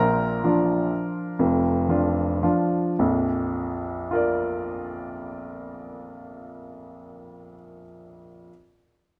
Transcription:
Already playing: A#1 A#2 A#4 A#5
0.44 F3 D4 F4
1.39 F1 F2
1.89 F3 D4 F4
2.43 F3 D4 F4
2.99 A#1 F2
4.11 F4 A#4
4.15 D5

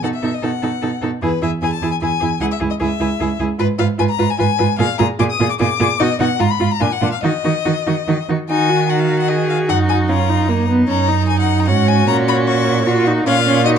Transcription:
0.03 B2 D#4 A4 F#5
0.14 E5
0.23 B2 D#4 A4
0.34 D#5
0.43 B2 D#4 A4 F#5
0.62 B2 D#4 A4
0.82 B2 D#4 A4
1.02 B2 D#4 A4
1.22 E2 E4 G#4 B4
1.42 E2 E4 G#4 E5
1.61 E2 E4 G#4 G#5
1.73 A5
1.81 E2 E4 G#4
1.92 G#5
2.01 E2 E4 G#4 G#5
2.20 E2 E4 G#4
2.40 C#2 E4 G#4 F#5
2.51 E5
2.60 C#2 E4 G#4
2.70 D#5
2.80 C#2 E4 G#4 E5
3.00 C#2 E4 G#4
3.20 C#2 E4 G#4
3.40 C#2 E4 G#4
3.58 G#2 F4 B4
3.78 G#2 F4 B4 F5
3.98 G#2 F4 B4 G#5
4.09 A#5
4.19 G#2 F4 B4
4.30 G#5
4.38 G#2 F4 B4 G#5
4.58 G#2 F4 B4
4.78 A#2 F4 G#4 F5
4.99 A#2 F4 G#4 A#5
5.19 A#2 F4 G#4 D6
5.30 D#6
5.40 A#2 F4 G#4
5.50 D6
5.60 A#2 F4 G#4 D6
5.79 A#2 F4 G#4
5.99 B2 D#4 F#4 D#5
6.19 B2 D#4 F#4 F#5
6.39 G#2 F4 A#5
6.50 B5
6.60 G#2 F4
6.71 A#5
6.80 A#2 D4 F4 G#5
6.92 F#5
7.01 A#2 D4 F4
7.12 F5
7.22 D#3 D#4 F#4 D#5
7.44 D#3 D#4 F#4
7.65 D#3 D#4 F#4
7.87 D#3 D#4 F#4
8.08 D#3 D#4 F#4
8.29 D#3 D#4 F#4
8.49 D#3 D#4 F#4 G#5
8.69 F#4
8.89 D#4 F#4 F#5
8.99 F5
9.19 F#5
9.28 G#4 D#5
9.49 F5
9.68 F#2 D#4 F#4 F#5
9.89 G#5
10.09 C#4 F4 A#5
10.29 D#4
10.49 A#3 D#4
10.69 B3
10.88 F#2 C#4 A#5
11.08 D#4
11.29 G#5
11.39 F#5
11.60 A#5
11.68 G#2 C#4 F#4 F#5
11.88 G#5
12.07 A#2 C#4 A#5
12.28 B5
12.48 C#6
12.86 F4 F#4
13.07 D#4
13.26 A#2 C#4 F4 F5
13.46 C#4
13.65 D#4 F#4 D#5

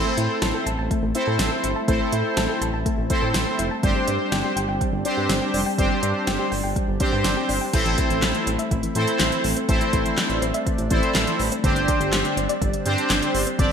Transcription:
Already playing: A3 C4 E4 A4 C5
0.05 A3
0.17 A2 E4, closed hi-hat
0.42 A1 A5, snare, closed hi-hat
0.54 A4
0.66 A1 A5, closed hi-hat
0.79 A1 A5
0.91 A3, kick, closed hi-hat
1.03 A1 A3
1.15 C4 E4 A4 C5, closed hi-hat
1.27 A2 A4
1.39 A1, snare, closed hi-hat
1.52 A4
1.64 G1 E4, closed hi-hat
1.76 A5
1.88 A1 A3 C4 E4 A4 C5, kick, closed hi-hat
2.01 A3
2.12 A2 E4, closed hi-hat
2.37 A1 A5, snare, closed hi-hat
2.49 A4
2.61 A1 A5, closed hi-hat
2.74 A1 A5
2.86 A3, kick, closed hi-hat
2.98 A1 A3
3.10 C4 E4 A4 C5, kick, closed hi-hat
3.22 A2 A4
3.34 A1, snare, closed hi-hat
3.47 A4
3.59 F1 E4, closed hi-hat
3.71 A5
3.83 G1 G3 C4 D4 G4 C5, kick, closed hi-hat
3.96 G3
4.08 G2 D4, closed hi-hat
4.32 G1 G5, snare, closed hi-hat
4.44 G4
4.56 G1 G5, closed hi-hat
4.69 G1 G5
4.81 G3, kick, closed hi-hat
4.93 G1 G3
5.05 C4 D4 G4 C5, closed hi-hat
5.17 G2 G4
5.29 G1, snare, closed hi-hat
5.42 G4
5.54 F1 D4, open hi-hat
5.66 G5
5.78 G1 G3 C4 D4 G4 C5, kick, closed hi-hat
5.91 G3
6.03 G2 D4, closed hi-hat
6.27 G1 G5, snare, closed hi-hat
6.39 G4
6.52 G1 G5, open hi-hat
6.64 G1 G5
6.76 G3, kick, closed hi-hat
6.88 G1 G3
7.00 C4 D4 G4 C5, kick, closed hi-hat
7.13 G2 G4
7.24 G1, snare, closed hi-hat
7.37 G4
7.49 G1 D4, open hi-hat
7.61 G5
7.73 A1 E3 A3 C4 E4 A4 C5, kick, closed hi-hat, crash
7.86 A1 E3, closed hi-hat
7.98 E3, kick, closed hi-hat
8.10 A1 E3, closed hi-hat
8.22 A1 E3, snare, clap, closed hi-hat
8.34 E3, closed hi-hat
8.47 A1 C4, closed hi-hat
8.59 E5, closed hi-hat
8.71 A1 E3, kick, closed hi-hat
8.83 E3, closed hi-hat
8.95 A2 E3 C4 E4 A4 C5, closed hi-hat
9.07 closed hi-hat
9.20 A1 E3, snare, clap, closed hi-hat
9.32 E3, closed hi-hat
9.44 A1 E3, open hi-hat
9.57 C4, closed hi-hat
9.69 A1 E3 C4 D4 E4 A4 C5, kick, closed hi-hat
9.81 E3, closed hi-hat
9.93 A1 E3, kick, closed hi-hat
10.06 E3, closed hi-hat
10.17 E3, snare, clap, closed hi-hat
10.30 A1 E3, closed hi-hat
10.42 A1 C4, closed hi-hat
10.54 E5, closed hi-hat
10.66 E3, kick, closed hi-hat
10.78 A1 E3, closed hi-hat
10.90 A1 E3 C4 E4 A4 C5, kick, closed hi-hat
11.03 closed hi-hat
11.15 A1 E3, snare, clap, closed hi-hat
11.27 E3, closed hi-hat
11.39 A1 E3, open hi-hat
11.52 C4, closed hi-hat
11.64 G1 D3 G3 C4 D4 G4 C5, kick, closed hi-hat
11.76 G1 D3, closed hi-hat
11.88 D3, kick, closed hi-hat
12.00 G1 D3, closed hi-hat
12.13 G1 D3, snare, clap, closed hi-hat
12.25 D3, closed hi-hat
12.37 G1 C4, closed hi-hat
12.49 D5, closed hi-hat
12.61 G1 D3, kick, closed hi-hat
12.73 D3, closed hi-hat
12.86 G2 D3 C4 D4 G4 C5, closed hi-hat
12.98 closed hi-hat
13.10 G1 D3, snare, clap, closed hi-hat
13.22 D3, closed hi-hat
13.35 G1 D3, open hi-hat
13.47 C4, closed hi-hat
13.59 G1 D3 C4 D4 G4 D5, kick, closed hi-hat

